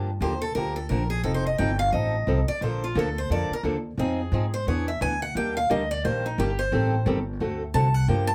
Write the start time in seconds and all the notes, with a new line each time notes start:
Already playing: G2
0.20 D#2 D3 F3 A#3 D4 G4 C5
0.42 A4
0.55 D2 D3 F3 A#3 D4 G4 A#4
0.76 A4
0.89 A#1 D3 F3 A#3 D4 G4 A#4
1.10 G#4
1.24 F1 F3 C4 D#4 A4
1.34 C5
1.47 D#5
1.58 G1 F3 C4 D#4 A4 G5
1.79 F5
1.92 A1 F3 C4 D#4 A4 D#5
2.27 C2 F3 C4 D#4 A4
2.48 D5, muted upright bass stroke
2.61 A#1 D3 F3 A#3 D4 A4 C5
2.84 F4
2.95 D2 D3 F3 A#3 D4 A4
3.18 C5
3.30 F2 D3 F3 A#3 D4 A4 D5
3.50 A#4, muted upright bass stroke
3.63 D#2 D3 F3 A#3 D4 A4
3.97 F2 F3 C4 D#4 G#4
4.32 G#2 F3 C4 D#4 G#4
4.54 C5
4.67 E2 E3 B3 D4 G#4 C#5
4.88 E5
5.01 D2 E3 B3 D4 G#4 G#5
5.22 F#5
5.35 D#2 D#3 G3 A#3 D4 G4 G5
5.57 F5
5.70 D2 D#3 G3 A#3 D4 G4 D#5
5.91 D5
6.04 A#1 D#3 G3 A#3 D4 G4 C5
6.26 D#4
6.38 G1 D#3 G3 A#3 D4 G4
6.59 C5
6.72 A1 D#3 G3 C4 G4 A4
7.06 G1 D#3 G3 C4 G4 A4
7.40 D2 D3 A3 C4 F#4 A4
7.74 C2 D3 A3 C4 F#4 A4 A5
7.94 F#5
8.08 G2 D3 F3 A#3 D4 G4 G5
8.27 A5